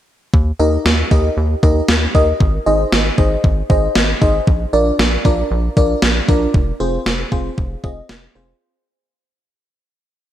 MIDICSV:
0, 0, Header, 1, 4, 480
1, 0, Start_track
1, 0, Key_signature, -3, "major"
1, 0, Tempo, 517241
1, 313, Time_signature, 4, 2, 24, 8
1, 9585, End_track
2, 0, Start_track
2, 0, Title_t, "FM electric piano"
2, 0, Program_c, 0, 5
2, 552, Note_on_c, 0, 63, 82
2, 553, Note_on_c, 0, 67, 77
2, 553, Note_on_c, 0, 70, 76
2, 553, Note_on_c, 0, 75, 94
2, 715, Note_off_c, 0, 63, 0
2, 715, Note_off_c, 0, 67, 0
2, 715, Note_off_c, 0, 70, 0
2, 715, Note_off_c, 0, 75, 0
2, 1033, Note_on_c, 0, 63, 76
2, 1033, Note_on_c, 0, 67, 72
2, 1033, Note_on_c, 0, 70, 73
2, 1033, Note_on_c, 0, 75, 88
2, 1195, Note_off_c, 0, 63, 0
2, 1195, Note_off_c, 0, 67, 0
2, 1195, Note_off_c, 0, 70, 0
2, 1195, Note_off_c, 0, 75, 0
2, 1512, Note_on_c, 0, 67, 72
2, 1512, Note_on_c, 0, 70, 72
2, 1512, Note_on_c, 0, 75, 86
2, 1513, Note_on_c, 0, 63, 81
2, 1674, Note_off_c, 0, 70, 0
2, 1675, Note_off_c, 0, 63, 0
2, 1675, Note_off_c, 0, 67, 0
2, 1675, Note_off_c, 0, 75, 0
2, 1992, Note_on_c, 0, 75, 88
2, 1993, Note_on_c, 0, 63, 78
2, 1993, Note_on_c, 0, 67, 71
2, 1993, Note_on_c, 0, 70, 72
2, 2155, Note_off_c, 0, 63, 0
2, 2155, Note_off_c, 0, 67, 0
2, 2155, Note_off_c, 0, 70, 0
2, 2155, Note_off_c, 0, 75, 0
2, 2472, Note_on_c, 0, 63, 84
2, 2472, Note_on_c, 0, 68, 76
2, 2472, Note_on_c, 0, 72, 76
2, 2472, Note_on_c, 0, 75, 88
2, 2634, Note_off_c, 0, 68, 0
2, 2635, Note_off_c, 0, 63, 0
2, 2635, Note_off_c, 0, 72, 0
2, 2635, Note_off_c, 0, 75, 0
2, 2953, Note_on_c, 0, 63, 79
2, 2954, Note_on_c, 0, 68, 75
2, 2954, Note_on_c, 0, 72, 74
2, 2954, Note_on_c, 0, 75, 85
2, 3115, Note_off_c, 0, 63, 0
2, 3115, Note_off_c, 0, 68, 0
2, 3115, Note_off_c, 0, 72, 0
2, 3115, Note_off_c, 0, 75, 0
2, 3431, Note_on_c, 0, 63, 79
2, 3431, Note_on_c, 0, 68, 74
2, 3431, Note_on_c, 0, 72, 75
2, 3432, Note_on_c, 0, 75, 86
2, 3594, Note_off_c, 0, 63, 0
2, 3594, Note_off_c, 0, 68, 0
2, 3594, Note_off_c, 0, 72, 0
2, 3594, Note_off_c, 0, 75, 0
2, 3911, Note_on_c, 0, 75, 87
2, 3912, Note_on_c, 0, 63, 79
2, 3913, Note_on_c, 0, 68, 73
2, 3913, Note_on_c, 0, 72, 71
2, 4074, Note_off_c, 0, 63, 0
2, 4074, Note_off_c, 0, 75, 0
2, 4075, Note_off_c, 0, 68, 0
2, 4075, Note_off_c, 0, 72, 0
2, 4391, Note_on_c, 0, 70, 74
2, 4391, Note_on_c, 0, 74, 92
2, 4392, Note_on_c, 0, 62, 85
2, 4392, Note_on_c, 0, 65, 77
2, 4554, Note_off_c, 0, 62, 0
2, 4554, Note_off_c, 0, 65, 0
2, 4554, Note_off_c, 0, 70, 0
2, 4554, Note_off_c, 0, 74, 0
2, 4872, Note_on_c, 0, 74, 90
2, 4873, Note_on_c, 0, 62, 83
2, 4873, Note_on_c, 0, 70, 74
2, 4874, Note_on_c, 0, 65, 72
2, 5035, Note_off_c, 0, 62, 0
2, 5035, Note_off_c, 0, 65, 0
2, 5035, Note_off_c, 0, 70, 0
2, 5035, Note_off_c, 0, 74, 0
2, 5354, Note_on_c, 0, 62, 79
2, 5354, Note_on_c, 0, 65, 72
2, 5354, Note_on_c, 0, 70, 71
2, 5354, Note_on_c, 0, 74, 88
2, 5515, Note_off_c, 0, 62, 0
2, 5515, Note_off_c, 0, 65, 0
2, 5515, Note_off_c, 0, 70, 0
2, 5515, Note_off_c, 0, 74, 0
2, 5831, Note_on_c, 0, 65, 70
2, 5832, Note_on_c, 0, 62, 78
2, 5832, Note_on_c, 0, 70, 74
2, 5832, Note_on_c, 0, 74, 88
2, 5994, Note_off_c, 0, 65, 0
2, 5994, Note_off_c, 0, 70, 0
2, 5995, Note_off_c, 0, 62, 0
2, 5995, Note_off_c, 0, 74, 0
2, 6311, Note_on_c, 0, 68, 77
2, 6312, Note_on_c, 0, 60, 85
2, 6312, Note_on_c, 0, 65, 76
2, 6312, Note_on_c, 0, 72, 92
2, 6474, Note_off_c, 0, 65, 0
2, 6474, Note_off_c, 0, 68, 0
2, 6475, Note_off_c, 0, 60, 0
2, 6475, Note_off_c, 0, 72, 0
2, 6792, Note_on_c, 0, 60, 77
2, 6792, Note_on_c, 0, 65, 74
2, 6792, Note_on_c, 0, 68, 74
2, 6792, Note_on_c, 0, 72, 88
2, 6954, Note_off_c, 0, 60, 0
2, 6954, Note_off_c, 0, 68, 0
2, 6954, Note_off_c, 0, 72, 0
2, 6955, Note_off_c, 0, 65, 0
2, 7272, Note_on_c, 0, 65, 73
2, 7273, Note_on_c, 0, 60, 77
2, 7273, Note_on_c, 0, 68, 74
2, 7273, Note_on_c, 0, 75, 86
2, 7435, Note_off_c, 0, 60, 0
2, 7435, Note_off_c, 0, 65, 0
2, 7435, Note_off_c, 0, 68, 0
2, 7435, Note_off_c, 0, 75, 0
2, 7752, Note_on_c, 0, 72, 87
2, 7753, Note_on_c, 0, 60, 75
2, 7753, Note_on_c, 0, 65, 71
2, 7753, Note_on_c, 0, 68, 71
2, 7915, Note_off_c, 0, 60, 0
2, 7915, Note_off_c, 0, 65, 0
2, 7915, Note_off_c, 0, 68, 0
2, 7915, Note_off_c, 0, 72, 0
2, 9585, End_track
3, 0, Start_track
3, 0, Title_t, "Analog synth bass"
3, 0, Program_c, 1, 38
3, 312, Note_on_c, 1, 39, 102
3, 480, Note_off_c, 1, 39, 0
3, 552, Note_on_c, 1, 39, 98
3, 720, Note_off_c, 1, 39, 0
3, 792, Note_on_c, 1, 39, 101
3, 960, Note_off_c, 1, 39, 0
3, 1032, Note_on_c, 1, 39, 100
3, 1200, Note_off_c, 1, 39, 0
3, 1272, Note_on_c, 1, 39, 100
3, 1440, Note_off_c, 1, 39, 0
3, 1513, Note_on_c, 1, 39, 104
3, 1681, Note_off_c, 1, 39, 0
3, 1752, Note_on_c, 1, 39, 104
3, 1920, Note_off_c, 1, 39, 0
3, 1992, Note_on_c, 1, 39, 95
3, 2160, Note_off_c, 1, 39, 0
3, 2232, Note_on_c, 1, 32, 107
3, 2400, Note_off_c, 1, 32, 0
3, 2474, Note_on_c, 1, 32, 105
3, 2642, Note_off_c, 1, 32, 0
3, 2713, Note_on_c, 1, 32, 103
3, 2881, Note_off_c, 1, 32, 0
3, 2952, Note_on_c, 1, 32, 98
3, 3120, Note_off_c, 1, 32, 0
3, 3192, Note_on_c, 1, 32, 103
3, 3360, Note_off_c, 1, 32, 0
3, 3432, Note_on_c, 1, 32, 105
3, 3600, Note_off_c, 1, 32, 0
3, 3671, Note_on_c, 1, 32, 103
3, 3840, Note_off_c, 1, 32, 0
3, 3913, Note_on_c, 1, 32, 99
3, 4081, Note_off_c, 1, 32, 0
3, 4152, Note_on_c, 1, 34, 105
3, 4320, Note_off_c, 1, 34, 0
3, 4391, Note_on_c, 1, 34, 97
3, 4559, Note_off_c, 1, 34, 0
3, 4630, Note_on_c, 1, 34, 105
3, 4799, Note_off_c, 1, 34, 0
3, 4872, Note_on_c, 1, 34, 100
3, 5040, Note_off_c, 1, 34, 0
3, 5112, Note_on_c, 1, 34, 111
3, 5280, Note_off_c, 1, 34, 0
3, 5352, Note_on_c, 1, 34, 101
3, 5520, Note_off_c, 1, 34, 0
3, 5591, Note_on_c, 1, 34, 99
3, 5760, Note_off_c, 1, 34, 0
3, 5833, Note_on_c, 1, 34, 101
3, 6001, Note_off_c, 1, 34, 0
3, 6072, Note_on_c, 1, 29, 105
3, 6240, Note_off_c, 1, 29, 0
3, 6312, Note_on_c, 1, 29, 92
3, 6480, Note_off_c, 1, 29, 0
3, 6551, Note_on_c, 1, 29, 99
3, 6720, Note_off_c, 1, 29, 0
3, 6792, Note_on_c, 1, 29, 95
3, 6960, Note_off_c, 1, 29, 0
3, 7033, Note_on_c, 1, 29, 109
3, 7201, Note_off_c, 1, 29, 0
3, 7273, Note_on_c, 1, 29, 100
3, 7441, Note_off_c, 1, 29, 0
3, 7513, Note_on_c, 1, 29, 104
3, 7681, Note_off_c, 1, 29, 0
3, 7753, Note_on_c, 1, 29, 98
3, 7921, Note_off_c, 1, 29, 0
3, 9585, End_track
4, 0, Start_track
4, 0, Title_t, "Drums"
4, 312, Note_on_c, 9, 36, 106
4, 405, Note_off_c, 9, 36, 0
4, 795, Note_on_c, 9, 38, 114
4, 888, Note_off_c, 9, 38, 0
4, 1032, Note_on_c, 9, 36, 83
4, 1125, Note_off_c, 9, 36, 0
4, 1513, Note_on_c, 9, 36, 92
4, 1606, Note_off_c, 9, 36, 0
4, 1749, Note_on_c, 9, 38, 108
4, 1842, Note_off_c, 9, 38, 0
4, 1993, Note_on_c, 9, 36, 84
4, 2085, Note_off_c, 9, 36, 0
4, 2231, Note_on_c, 9, 36, 111
4, 2324, Note_off_c, 9, 36, 0
4, 2714, Note_on_c, 9, 38, 113
4, 2807, Note_off_c, 9, 38, 0
4, 2952, Note_on_c, 9, 36, 87
4, 3044, Note_off_c, 9, 36, 0
4, 3193, Note_on_c, 9, 36, 93
4, 3285, Note_off_c, 9, 36, 0
4, 3432, Note_on_c, 9, 36, 93
4, 3525, Note_off_c, 9, 36, 0
4, 3670, Note_on_c, 9, 38, 112
4, 3763, Note_off_c, 9, 38, 0
4, 3913, Note_on_c, 9, 36, 88
4, 4006, Note_off_c, 9, 36, 0
4, 4152, Note_on_c, 9, 36, 109
4, 4244, Note_off_c, 9, 36, 0
4, 4634, Note_on_c, 9, 38, 115
4, 4727, Note_off_c, 9, 38, 0
4, 4872, Note_on_c, 9, 36, 83
4, 4965, Note_off_c, 9, 36, 0
4, 5353, Note_on_c, 9, 36, 92
4, 5445, Note_off_c, 9, 36, 0
4, 5589, Note_on_c, 9, 38, 108
4, 5682, Note_off_c, 9, 38, 0
4, 5833, Note_on_c, 9, 36, 87
4, 5926, Note_off_c, 9, 36, 0
4, 6072, Note_on_c, 9, 36, 112
4, 6165, Note_off_c, 9, 36, 0
4, 6554, Note_on_c, 9, 38, 117
4, 6647, Note_off_c, 9, 38, 0
4, 6792, Note_on_c, 9, 36, 85
4, 6885, Note_off_c, 9, 36, 0
4, 7033, Note_on_c, 9, 36, 96
4, 7126, Note_off_c, 9, 36, 0
4, 7273, Note_on_c, 9, 36, 92
4, 7366, Note_off_c, 9, 36, 0
4, 7510, Note_on_c, 9, 38, 110
4, 7603, Note_off_c, 9, 38, 0
4, 9585, End_track
0, 0, End_of_file